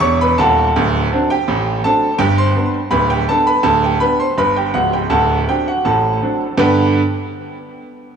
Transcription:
0.00 0.32 E1 loud
0.00 0.32 E2 loud
0.00 0.19 C#5 medium
0.00 0.19 C#6 loud
0.21 0.38 B4 medium
0.21 0.39 B5 loud
0.38 0.68 D#1 loud
0.38 0.68 D#2 medium
0.38 1.26 A4 medium
0.38 1.26 F#5 medium
0.38 1.25 A5 loud
0.76 1.07 D1 loud
0.76 1.06 D2 loud
1.12 1.32 F#3 medium
1.12 1.32 C4 medium
1.12 1.33 D4 medium
1.30 1.81 G4 medium
1.30 1.74 G5 loud
1.48 1.79 A1 medium
1.48 1.79 A2 medium
1.84 2.05 F#3 soft
1.84 2.05 C4 medium
1.84 2.05 D4 medium
1.84 2.19 A4 medium
1.84 2.13 A5 loud
2.18 2.51 G1 medium
2.18 2.50 G2 loud
2.18 2.37 G4 medium
2.18 2.38 G5 loud
2.38 2.90 C5 medium
2.38 2.90 C6 loud
2.55 2.76 G3 medium
2.55 2.77 B3 medium
2.55 2.76 D4 medium
2.91 3.23 D1 medium
2.91 3.23 D2 medium
2.91 3.10 B4 medium
2.91 3.10 B5 medium
3.10 3.29 G4 medium
3.10 3.29 G5 medium
3.29 3.49 G3 medium
3.29 3.50 B3 medium
3.29 3.50 D4 medium
3.29 3.47 A4 medium
3.29 3.48 A5 loud
3.47 3.65 B4 medium
3.47 3.66 B5 medium
3.63 3.96 D1 medium
3.63 3.96 D2 loud
3.63 3.83 A4 medium
3.63 3.83 A5 loud
3.84 4.02 G4 medium
3.84 4.03 G5 medium
4.00 4.21 G3 medium
4.00 4.21 B3 medium
4.00 4.22 D4 medium
4.00 4.20 B4 medium
4.00 4.20 B5 loud
4.20 4.38 C5 medium
4.20 4.39 C6 medium
4.38 4.70 G1 medium
4.38 4.70 G2 medium
4.38 4.56 B4 medium
4.38 4.57 B5 medium
4.56 4.75 G4 medium
4.56 4.75 G5 medium
4.74 5.04 C#1 medium
4.74 5.04 C#2 medium
4.74 4.93 F#4 medium
4.74 4.93 F#5 medium
4.93 5.11 G4 medium
4.93 5.12 G5 medium
5.10 5.43 D1 medium
5.10 5.42 D2 medium
5.10 5.46 A4 medium
5.10 5.46 F#5 medium
5.10 5.40 A5 medium
5.48 5.69 F#3 soft
5.48 5.69 C4 medium
5.48 5.70 D4 medium
5.48 5.67 G4 medium
5.48 5.67 G5 medium
5.68 5.85 F#4 medium
5.68 5.84 F#5 medium
5.85 6.17 A1 medium
5.85 6.17 A2 medium
5.85 6.56 A4 medium
5.85 6.56 F#5 medium
5.85 6.56 A5 medium
6.22 6.43 F#3 soft
6.22 6.43 C4 soft
6.22 6.43 D4 soft
6.58 6.99 G2 loud
6.58 6.99 D3 loud
6.58 7.00 B3 loud
6.58 7.00 D4 loud
6.58 7.00 G4 loud
6.58 7.00 B4 loud
6.58 7.00 G5 medium

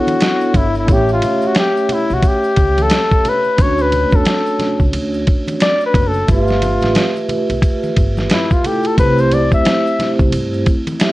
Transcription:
0.00 0.88 B3 soft
0.00 0.89 D4 soft
0.00 0.89 E4 soft
0.00 0.58 F#4 medium
0.00 0.89 A4 soft
0.00 0.89 C#5 medium
0.07 ride soft
0.07 high conga medium
0.07 shaker soft
0.20 snare loud
0.20 hi-hat pedal medium
0.20 ride medium
0.20 shaker medium
0.41 shaker soft
0.54 0.85 G1 medium
0.54 0.76 E4 medium
0.54 kick medium
0.54 ride medium
0.54 low conga medium
0.54 shaker soft
0.75 0.94 E4 medium
0.75 shaker soft
0.86 1.19 A1 medium
0.86 3.53 A3 medium
0.86 3.54 C#4 medium
0.86 3.55 G4 medium
0.86 3.54 E5 medium
0.86 kick loud
0.86 ride medium
0.86 shaker medium
0.91 1.11 G4 medium
0.91 3.55 C#5 medium
1.09 shaker soft
1.13 1.48 F4 medium
1.22 ride medium
1.22 low conga medium
1.22 shaker soft
1.42 shaker soft
1.46 1.58 F#4 medium
1.55 snare loud
1.55 hi-hat pedal soft
1.55 ride medium
1.55 shaker medium
1.59 1.94 G4 medium
1.77 shaker soft
1.89 2.15 E4 medium
1.89 ride medium
1.89 low conga medium
1.89 shaker soft
2.10 2.22 B1 medium
2.10 2.29 F#4 medium
2.10 shaker soft
2.23 kick medium
2.23 ride medium
2.23 shaker medium
2.28 2.83 G4 medium
2.44 shaker soft
2.56 2.87 C#2 medium
2.56 kick medium
2.56 ride medium
2.56 shaker soft
2.78 ride soft
2.78 high conga medium
2.78 shaker soft
2.82 3.30 A4 loud
2.90 snare loud
2.90 hi-hat pedal medium
2.90 ride medium
2.90 shaker medium
3.11 kick medium
3.11 shaker soft
3.25 3.63 B4 loud
3.25 ride medium
3.25 low conga medium
3.25 shaker soft
3.44 shaker soft
3.56 4.07 D2 loud
3.56 6.23 A3 medium
3.56 6.24 C#4 medium
3.56 6.24 D4 medium
3.56 6.25 F#4 medium
3.56 kick loud
3.56 ride medium
3.56 shaker medium
3.61 6.25 C#5 medium
3.61 3.83 C#5 loud
3.78 4.17 B4 loud
3.78 shaker soft
3.92 ride medium
3.92 low conga medium
3.92 shaker soft
4.11 4.24 E2 medium
4.11 4.81 A4 medium
4.11 kick medium
4.11 shaker soft
4.25 snare loud
4.25 hi-hat pedal soft
4.25 ride medium
4.25 shaker medium
4.46 shaker soft
4.59 snare soft
4.59 ride medium
4.59 low conga medium
4.59 shaker soft
4.79 4.92 C#2 medium
4.79 kick medium
4.79 shaker soft
4.93 5.23 D2 medium
4.93 ride medium
4.93 shaker medium
5.14 shaker soft
5.27 kick medium
5.27 ride medium
5.27 shaker soft
5.47 ride soft
5.47 high conga medium
5.47 shaker soft
5.60 5.82 D5 loud
5.60 snare loud
5.60 hi-hat pedal medium
5.60 ride medium
5.60 shaker medium
5.81 shaker soft
5.86 6.09 B4 loud
5.94 6.24 F#1 loud
5.94 kick medium
5.94 ride medium
5.94 low conga medium
5.94 shaker soft
6.07 6.29 A4 loud
6.13 shaker soft
6.26 6.77 G1 loud
6.26 8.59 A3 medium
6.26 8.60 F4 medium
6.26 8.61 G4 medium
6.26 8.60 E5 medium
6.26 kick loud
6.26 ride medium
6.26 shaker medium
6.31 7.26 F4 medium
6.31 8.61 B4 medium
6.47 snare soft
6.47 shaker soft
6.62 ride medium
6.62 high conga soft
6.62 low conga medium
6.62 shaker soft
6.81 6.94 A1 medium
6.81 snare soft
6.81 ride soft
6.81 shaker soft
6.95 snare loud
6.95 hi-hat pedal medium
6.95 ride medium
6.95 high conga medium
6.95 shaker medium
7.16 shaker soft
7.29 ride medium
7.29 high conga soft
7.29 low conga medium
7.29 shaker soft
7.49 7.61 B1 medium
7.49 ride soft
7.49 shaker soft
7.62 kick medium
7.62 ride medium
7.62 shaker medium
7.83 high conga medium
7.83 shaker soft
7.96 8.27 G1 medium
7.96 kick medium
7.96 ride medium
7.96 shaker soft
8.17 snare soft
8.17 high conga medium
8.17 shaker soft
8.30 8.54 E4 medium
8.30 snare loud
8.30 hi-hat pedal medium
8.30 ride medium
8.30 shaker medium
8.51 8.68 F4 medium
8.51 kick medium
8.51 shaker soft
8.63 8.94 A3 soft
8.63 8.96 E4 soft
8.63 8.98 F4 soft
8.63 8.98 G4 soft
8.63 8.88 G4 medium
8.63 8.98 A4 medium
8.63 ride medium
8.63 low conga medium
8.63 shaker soft
8.83 8.99 A4 medium
8.83 ride soft
8.83 shaker soft
8.95 9.46 C2 loud
8.95 11.12 A3 medium
8.95 11.12 C4 medium
8.95 11.12 E4 medium
8.95 10.64 G4 medium
8.95 kick loud
8.95 ride medium
8.95 shaker medium
8.99 9.22 B4 loud
8.99 10.64 C5 medium
9.18 9.35 C5 medium
9.18 shaker soft
9.32 9.53 D5 medium
9.32 ride medium
9.32 low conga medium
9.32 shaker soft
9.52 9.64 D2 medium
9.52 10.16 E5 loud
9.52 kick medium
9.52 shaker soft
9.65 snare loud
9.65 hi-hat pedal soft
9.65 ride medium
9.65 shaker medium
9.87 shaker soft
9.99 snare soft
9.99 ride medium
9.99 low conga medium
9.99 shaker soft
10.19 10.31 C2 medium
10.19 kick medium
10.19 shaker soft
10.32 10.62 G2 medium
10.32 ride medium
10.32 shaker medium
10.54 shaker soft
10.66 kick medium
10.66 ride medium
10.66 shaker soft
10.87 ride soft
10.87 high conga medium
10.87 shaker soft
11.00 11.12 G4 medium
11.00 11.12 E5 medium
11.00 snare loud
11.00 hi-hat pedal medium
11.00 ride medium
11.00 shaker medium

